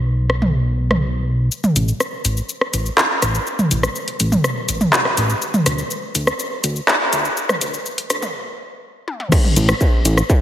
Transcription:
Already playing: analog synth bass B1
0.30 cross-stick
0.42 mid tom
0.91 cross-stick, mid tom
1.52 shaker
1.64 mid tom, shaker
1.76 analog synth bass A1, closed hi-hat, shaker
1.88 shaker
2.00 cross-stick, shaker
2.25 analog synth bass A1, closed hi-hat, shaker
2.37 shaker
2.49 shaker
2.61 cross-stick
2.74 analog synth bass A1, closed hi-hat, shaker
2.86 shaker
2.98 clap, shaker
3.22 analog synth bass A1, cross-stick, closed hi-hat, shaker
3.35 shaker
3.47 shaker
3.59 mid tom, shaker
3.71 analog synth bass A1, closed hi-hat, shaker
3.83 cross-stick, shaker
3.96 shaker
4.08 closed hi-hat
4.20 analog synth bass A1, closed hi-hat, shaker
4.32 mid tom, shaker
4.44 cross-stick, shaker
4.69 analog synth bass A1, closed hi-hat, shaker
4.81 mid tom, shaker
4.93 clap, shaker
5.05 cross-stick
5.17 analog synth bass A1, closed hi-hat, shaker
5.30 shaker
5.42 shaker
5.54 mid tom, shaker
5.66 analog synth bass D2, cross-stick, closed hi-hat, shaker
5.78 shaker
5.91 shaker
6.15 analog synth bass D2, closed hi-hat, shaker
6.27 cross-stick, shaker
6.39 shaker
6.64 analog synth bass D2, closed hi-hat, shaker
6.76 shaker
6.88 cross-stick, clap, shaker
7.13 analog synth bass D2, closed hi-hat, shaker
7.25 shaker
7.37 shaker
7.49 cross-stick, mid tom, shaker
7.61 analog synth bass D2, closed hi-hat, shaker
7.74 shaker
7.86 shaker
7.98 closed hi-hat
8.10 analog synth bass D2, cross-stick, closed hi-hat, shaker
8.22 mid tom, shaker
9.08 high tom
9.20 mid tom
9.32 kick, cross-stick, crash, shaker
9.44 mid tom
9.56 analog synth bass A1, closed hi-hat, shaker
9.69 cross-stick, shaker
9.81 kick, shaker
10.05 analog synth bass A1, closed hi-hat, shaker
10.18 cross-stick, shaker
10.30 kick, shaker

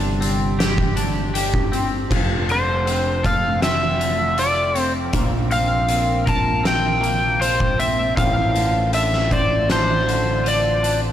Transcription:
Already playing: picked electric bass G1, clean electric guitar G2 C4 D4, ambient pad C3 D3 G3 D4 G4
0.21 clean electric guitar C4, closed hi-hat
0.59 clean electric guitar G4, snare, closed hi-hat
0.78 kick
0.96 clean electric guitar D4, closed hi-hat
1.34 clean electric guitar G4, closed hi-hat
1.54 kick
1.72 clean electric guitar C4, closed hi-hat
2.10 picked electric bass F1, ambient pad C3 F3 A3 D4 A4, clean electric guitar F3, kick, crash
2.48 clean electric guitar D3, electric slide guitar C5, closed hi-hat
2.86 clean electric guitar C4, closed hi-hat
3.23 clean electric guitar A4, electric slide guitar F5, kick, closed hi-hat
3.62 clean electric guitar C4, electric slide guitar E5, snare, closed hi-hat
3.99 clean electric guitar D3, closed hi-hat
4.38 clean electric guitar F4, electric slide guitar D5, closed hi-hat
4.75 clean electric guitar C4, closed hi-hat
4.80 electric slide guitar C5
5.12 picked electric bass A#1, ambient pad A#3 F4 A#4, clean electric guitar A#3, kick, closed hi-hat
5.50 clean electric guitar C4, electric slide guitar F5, closed hi-hat
5.88 clean electric guitar C4, closed hi-hat
6.26 clean electric guitar A#4, electric slide guitar A5, kick, closed hi-hat
6.63 clean electric guitar C4, electric slide guitar G5, snare, closed hi-hat
7.01 clean electric guitar A#3, closed hi-hat
7.40 clean electric guitar F4, electric slide guitar C5, closed hi-hat
7.60 kick
7.78 clean electric guitar C4, electric slide guitar E5, closed hi-hat
8.16 picked electric bass A1, clean electric guitar A2, ambient pad D3 A3 C4 C5, electric slide guitar F5, kick, closed hi-hat
8.54 clean electric guitar D3, closed hi-hat
8.93 clean electric guitar D4, electric slide guitar E5, closed hi-hat
9.13 snare
9.31 clean electric guitar C5, electric slide guitar D5, kick, closed hi-hat
9.69 clean electric guitar D4, electric slide guitar C5, snare, closed hi-hat
10.06 clean electric guitar D3, closed hi-hat
10.44 clean electric guitar F4, closed hi-hat
10.48 electric slide guitar D5
10.83 clean electric guitar D4, closed hi-hat

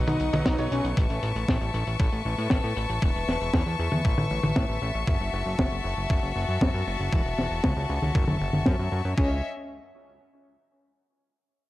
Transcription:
Already playing: grand piano F#3 B3 D#4 B4, string section B4 D#5 F#5 C#6
0.07 analog synth bass B1, analog synth lead D#4, closed hi-hat, high tom
0.20 analog synth bass B1, closed hi-hat
0.33 analog synth bass B1, grand piano F#3 B3 D#4 D#5, closed hi-hat, high tom
0.46 analog synth bass B1, analog synth lead D#4, kick, snare, closed hi-hat
0.58 analog synth bass B1, grand piano F#3 B3 D#4 C#5, closed hi-hat
0.71 analog synth bass B1, analog synth lead C#4, closed hi-hat
0.84 analog synth bass B1, closed hi-hat
0.97 analog synth bass A1, string section B4 E5 A5, kick, closed hi-hat
1.10 analog synth bass A1, closed hi-hat
1.23 analog synth bass A1, closed hi-hat
1.35 analog synth bass A1, closed hi-hat
1.48 analog synth bass A1, kick, snare, closed hi-hat
1.61 analog synth bass A1, closed hi-hat
1.74 analog synth bass A1, closed hi-hat
1.87 analog synth bass A1, closed hi-hat
1.99 analog synth bass A1, kick, closed hi-hat
2.12 analog synth bass A1, closed hi-hat
2.25 analog synth bass A1
2.38 analog synth bass A2, closed hi-hat
2.50 analog synth bass A1, kick, snare, closed hi-hat
2.64 analog synth bass A2, closed hi-hat
2.77 analog synth bass A1, closed hi-hat
2.89 analog synth bass A1, closed hi-hat
3.02 analog synth bass E1, kick, closed hi-hat
3.15 analog synth bass E1, closed hi-hat
3.28 analog synth bass E1, snare, closed hi-hat
3.41 analog synth bass E1, closed hi-hat
3.54 analog synth bass E2, kick, snare, closed hi-hat
3.66 analog synth bass E2, closed hi-hat
3.79 analog synth bass E2, closed hi-hat
3.92 analog synth bass E2, closed hi-hat, high tom
4.05 analog synth bass A1, kick, closed hi-hat
4.18 analog synth bass A1, closed hi-hat, high tom
4.31 analog synth bass A1
4.43 analog synth bass A1, closed hi-hat, high tom
4.56 analog synth bass A1, kick, snare, closed hi-hat
4.69 analog synth bass A1, closed hi-hat
4.82 analog synth bass A1, closed hi-hat
4.95 analog synth bass A1, closed hi-hat
5.07 analog synth bass F#1, string section F#4 A5, kick, closed hi-hat
5.20 analog synth bass F#1, closed hi-hat
5.33 analog synth bass F#1, closed hi-hat
5.46 analog synth bass F#1, closed hi-hat
5.59 analog synth bass F#1, kick, snare, closed hi-hat
5.71 analog synth bass F#1, closed hi-hat
5.84 analog synth bass F#1, closed hi-hat
5.97 analog synth bass F#1, closed hi-hat
6.10 analog synth bass F#1, kick, closed hi-hat
6.23 analog synth bass F#1, closed hi-hat
6.36 analog synth bass F#1
6.48 analog synth bass F#2, closed hi-hat
6.61 analog synth bass F#1, kick, snare, closed hi-hat
6.74 analog synth bass F#2
6.87 analog synth bass F#1, closed hi-hat
7.00 analog synth bass F#1, closed hi-hat
7.13 analog synth bass E1, kick, closed hi-hat
7.25 analog synth bass E1, closed hi-hat
7.38 analog synth bass E1, snare, closed hi-hat
7.51 analog synth bass E1, closed hi-hat
7.64 analog synth bass C#2, kick, snare, closed hi-hat
7.77 analog synth bass C#2, closed hi-hat
7.89 analog synth bass C#2, closed hi-hat
8.02 analog synth bass C#2, closed hi-hat, high tom
8.15 analog synth bass F#1, kick, closed hi-hat
8.28 analog synth bass F#1, closed hi-hat, high tom
8.41 analog synth bass F#1, closed hi-hat
8.53 analog synth bass F#1, closed hi-hat, high tom
8.65 analog synth bass F#2, kick, snare, closed hi-hat
8.79 analog synth bass F#2, closed hi-hat
8.91 analog synth bass F#2, closed hi-hat
9.04 analog synth bass F#2, closed hi-hat
9.18 analog synth bass C#2, analog synth lead C#4, string section C#4 C#5 D#5 E5, kick

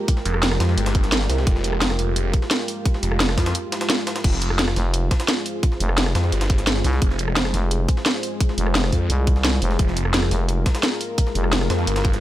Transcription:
Already playing: analog synth pad G#3 F4 G4 A#4
0.08 kick, closed hi-hat
0.17 snare
0.25 detuned saw bass F1, closed hi-hat
0.34 cross-stick
0.43 snare, closed hi-hat
0.52 cross-stick, snare
0.60 detuned saw bass F2, snare, closed hi-hat, open hi-hat
0.69 snare
0.77 detuned saw bass G1, snare, closed hi-hat
0.86 snare, closed hi-hat
0.95 kick, snare, closed hi-hat
1.04 snare, closed hi-hat
1.12 snare, closed hi-hat
1.21 snare
1.29 detuned saw bass C2, snare, closed hi-hat, open hi-hat
1.38 snare
1.47 detuned saw bass F1, kick, closed hi-hat
1.56 snare
1.64 closed hi-hat
1.73 cross-stick
1.81 snare, closed hi-hat
1.90 cross-stick, snare
1.99 detuned saw bass F1, closed hi-hat, open hi-hat
2.16 closed hi-hat
2.34 kick, closed hi-hat
2.42 snare
2.51 snare, closed hi-hat
2.68 closed hi-hat, open hi-hat
2.86 kick, closed hi-hat
2.94 snare
3.03 detuned saw bass F1, closed hi-hat
3.12 cross-stick
3.20 snare, closed hi-hat
3.29 cross-stick, snare
3.38 detuned saw bass F2, kick, snare, closed hi-hat, open hi-hat
3.46 snare, closed hi-hat
3.55 closed hi-hat
3.72 snare, closed hi-hat
3.81 snare, closed hi-hat
3.90 snare, closed hi-hat
4.07 snare, closed hi-hat, open hi-hat
4.16 snare, closed hi-hat
4.24 detuned saw bass F1, analog synth pad G#4 C5, kick, closed hi-hat, crash
4.33 snare
4.42 closed hi-hat
4.50 cross-stick
4.59 snare, closed hi-hat
4.68 cross-stick, snare
4.76 fm bass F1, snare, closed hi-hat, open hi-hat
4.94 closed hi-hat
5.11 kick, snare, closed hi-hat
5.20 snare, closed hi-hat
5.28 snare, closed hi-hat
5.46 closed hi-hat, open hi-hat
5.63 kick, closed hi-hat
5.72 snare
5.80 fm bass F1, closed hi-hat
5.89 cross-stick
5.98 snare, closed hi-hat
6.06 cross-stick, snare
6.15 detuned saw bass F2, snare, closed hi-hat, open hi-hat
6.24 snare
6.32 detuned saw bass G1, snare, closed hi-hat
6.41 snare, closed hi-hat
6.50 kick, snare, closed hi-hat
6.58 snare, closed hi-hat
6.67 snare, closed hi-hat
6.76 snare
6.84 fm bass C2, snare, closed hi-hat, open hi-hat
6.93 snare
7.02 detuned saw bass F1, kick, closed hi-hat
7.10 snare
7.19 closed hi-hat
7.28 cross-stick
7.36 snare, closed hi-hat
7.45 cross-stick, snare
7.54 fm bass F1, snare, closed hi-hat, open hi-hat
7.71 closed hi-hat
7.88 kick, closed hi-hat
7.97 snare
8.06 snare, closed hi-hat
8.23 closed hi-hat, open hi-hat
8.40 kick, closed hi-hat
8.49 snare
8.58 fm bass F1, closed hi-hat
8.66 cross-stick
8.75 snare, closed hi-hat
8.84 cross-stick, snare
8.92 detuned saw bass F2, kick, closed hi-hat, open hi-hat
9.10 fm bass C2, closed hi-hat
9.27 kick, closed hi-hat
9.36 snare
9.45 snare, closed hi-hat
9.62 fm bass F1, closed hi-hat, open hi-hat
9.71 snare
9.79 detuned saw bass F1, analog synth pad A#4, kick, closed hi-hat
9.88 snare
9.97 closed hi-hat
10.05 cross-stick
10.14 snare, closed hi-hat
10.23 cross-stick, snare
10.31 fm bass F1, snare, closed hi-hat, open hi-hat
10.49 closed hi-hat
10.66 kick, snare, closed hi-hat
10.75 snare, closed hi-hat
10.83 snare, closed hi-hat
11.01 closed hi-hat, open hi-hat
11.18 kick, closed hi-hat
11.27 snare
11.35 fm bass F1, closed hi-hat
11.44 cross-stick
11.53 snare, closed hi-hat
11.61 cross-stick, snare
11.70 detuned saw bass F2, snare, closed hi-hat, open hi-hat
11.79 snare
11.87 detuned saw bass G1, snare, closed hi-hat
11.96 snare, closed hi-hat
12.05 kick, snare, closed hi-hat
12.13 snare, closed hi-hat

